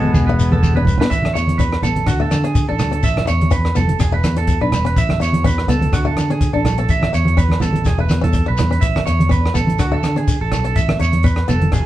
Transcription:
Already playing: B2 G#3 B3 A4
0.03 high conga
0.14 E1 G#4, kick, high conga, shekere
0.27 A3 B4, kick
0.39 shekere
0.51 B3 A4, kick, high conga
0.62 kick, high conga, shekere
0.74 C#4 B4, high conga
0.85 kick, low conga, shekere
0.98 B3 B4, snare, low conga, shekere
1.10 A1 E5, kick, closed hi-hat, shekere
1.23 cross-stick, high conga
1.34 E2 A3 C#5, closed hi-hat, shekere
1.48 closed hi-hat, high conga
1.58 C#4 B4, kick, closed hi-hat, shekere
1.72 cross-stick
1.83 A1 B3 A4, closed hi-hat, low conga, shekere
1.96 closed hi-hat, high conga
2.06 D2 F#4, kick, cross-stick, closed hi-hat, shekere
2.20 A3 A4
2.31 D3, cross-stick, closed hi-hat, high conga, shekere
2.44 C#4 G#4, closed hi-hat
2.55 kick, closed hi-hat, shekere
2.68 A1 D4 A4
2.79 D2, cross-stick, closed hi-hat, low conga, shekere
2.91 C#4 A4, closed hi-hat
3.03 A1 E5, kick, closed hi-hat, shekere
3.17 cross-stick, high conga
3.27 E2 A3 C#5, closed hi-hat, shekere
3.41 closed hi-hat, high conga
3.51 C#4 B4, kick, closed hi-hat, shekere
3.65 cross-stick
3.75 F1 B3 A4, closed hi-hat, low conga, shekere
3.88 closed hi-hat, high conga
3.99 E1 G#4, kick, cross-stick, closed hi-hat, shekere
4.12 A3 B4
4.24 E2, cross-stick, closed hi-hat, high conga, shekere
4.36 C#4 A4, closed hi-hat
4.47 kick, closed hi-hat, shekere
4.61 B1 D4 B4
4.72 E1, cross-stick, closed hi-hat, low conga, shekere
4.85 C#4 B4, closed hi-hat
4.96 A1 E5, kick, closed hi-hat, shekere
5.09 cross-stick, high conga
5.20 E2 A3 C#5, closed hi-hat, shekere
5.33 closed hi-hat, high conga
5.44 C#4 B4, kick, closed hi-hat, shekere
5.58 cross-stick
5.67 C#2 B3 A4, closed hi-hat, low conga, shekere
5.82 closed hi-hat, high conga
5.92 D2 F#4, kick, cross-stick, closed hi-hat, shekere
6.05 A3 A4
6.16 D3, cross-stick, closed hi-hat, high conga, shekere
6.30 C#4 G#4, closed hi-hat
6.41 kick, closed hi-hat, shekere
6.53 A1 D4 A4
6.65 A#1, cross-stick, closed hi-hat, low conga, shekere
6.78 C#4 A4, closed hi-hat
6.88 A1 E5, kick, closed hi-hat, shekere
7.01 cross-stick, high conga
7.13 E2 A3 C#5, closed hi-hat, shekere
7.25 closed hi-hat, high conga
7.37 C#4 B4, kick, closed hi-hat, shekere
7.49 cross-stick, high conga
7.60 A1 B3 A4, closed hi-hat, low conga, shekere
7.73 closed hi-hat, high conga
7.85 E1 G#4, kick, cross-stick, closed hi-hat, shekere
7.98 A3 B4
8.09 E2, cross-stick, closed hi-hat, high conga, shekere
8.21 C#4 A4, closed hi-hat, low conga
8.33 kick, closed hi-hat, shekere
8.46 B1 B4, muted steel-string acoustic guitar stroke
8.57 E2, cross-stick, closed hi-hat, low conga, shekere
8.71 C#4 B4, closed hi-hat
8.81 A1 E5, kick, closed hi-hat, shekere
8.96 cross-stick, high conga
9.06 E2 A3 C#5, closed hi-hat, shekere
9.20 closed hi-hat, high conga
9.29 C#4 B4, kick, closed hi-hat, shekere
9.46 cross-stick
9.54 A1 B3 A4, closed hi-hat, low conga, shekere
9.67 closed hi-hat, high conga
9.79 D2 F#4, kick, cross-stick, closed hi-hat, shekere
9.92 A3 A4
10.03 D3, cross-stick, closed hi-hat, high conga, shekere
10.16 C#4 G#4, closed hi-hat
10.28 kick, closed hi-hat, shekere
10.41 A1 A4
10.52 B1, cross-stick, closed hi-hat, low conga, shekere
10.64 C#4 A4, closed hi-hat
10.75 A1 E5, kick, closed hi-hat, shekere
10.89 cross-stick, high conga
10.99 E2 A3 C#5, closed hi-hat, shekere
11.13 closed hi-hat, high conga
11.23 C#4 B4, kick, closed hi-hat, shekere
11.36 cross-stick
11.48 F1 B3 A4, closed hi-hat, low conga, shekere
11.61 closed hi-hat, high conga
11.72 E1 G#4, kick, cross-stick, closed hi-hat, shekere

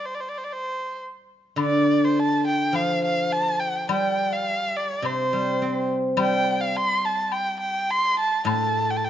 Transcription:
0.06 C5
0.14 D5
0.20 C5
0.29 D5
0.38 C5
0.44 D5
0.53 C5
1.56 D3, high woodblock
1.61 D5
2.05 C5
2.19 A5
2.47 G5
2.73 F3 F5, high woodblock
3.05 F5
3.33 A5
3.60 G5
3.89 G3 G5, high woodblock
4.33 F5
4.77 D5
5.02 C3 C5, high woodblock
5.33 G3
5.62 C4
6.17 G3 G5, high woodblock
6.61 F5
6.76 C6
7.05 A5
7.32 G5, high woodblock
7.60 G5
7.91 C6
8.20 A5
8.45 A2 A5, high woodblock
8.91 G5
8.97 A5
9.05 G5

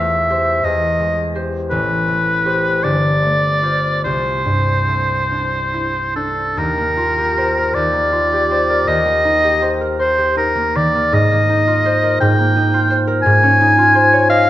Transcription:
Already playing: E2 A3 F4 C5 E5
0.30 G4 C5
0.64 E2 D#5
0.99 G#3
1.35 G4 C5
1.71 A1 B4
2.08 A3
2.45 G4 C5
2.83 G1 D5
3.23 A3
3.63 F4 C5
4.04 C2 C5
4.45 G2
4.88 A3
5.31 D4
5.74 E4
6.16 D4 A4
6.57 D#2 A#4
6.78 A#3
6.97 F4
7.18 G4
7.37 C5
7.58 A#4
7.74 D#2 D5
7.93 A#3
8.12 F4
8.33 G4
8.51 C5
8.70 A#4
8.87 D#2 D#5
9.06 A#3
9.25 D#4
9.44 G4
9.62 C5
9.81 A#4
9.99 C5
10.18 G4
10.36 D#4 A#4
10.55 A#3
10.75 D#3 D5
10.95 A#3
11.12 G#2 D#5
11.31 A#3
11.49 D#4
11.67 F4
11.86 C5
12.03 A#4
12.20 G#2 G5
12.39 A#3
12.56 D#4
12.74 F4
12.90 C5
13.07 A#4
13.22 G#2 G#5
13.43 C#4
13.61 D#4
13.78 F4
13.95 C5
14.12 C#5
14.30 D#5 F5

